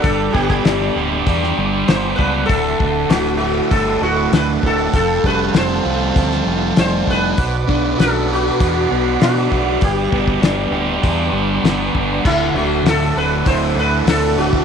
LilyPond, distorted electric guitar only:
\new Staff \with { instrumentName = "Distorted electric guitar" } { \time 4/4 \key d \mixolydian \tempo 4 = 98 g,8 b8 d'8 g'8 d'8 g8 b8 d'8 | d,8 d8 a8 e'8 a8 a,8 d8 a8 | f,8 g8 c'8 f'8 c'8 f8 g8 c'8 | b,8 d'8 fis'8 b'8 fis'8 b8 d'8 fis'8 |
g,8 b8 d'8 g'8 d'8 g8 b8 d'8 | d,8 d8 a,8 d8 e'8 a8 d8 a8 | }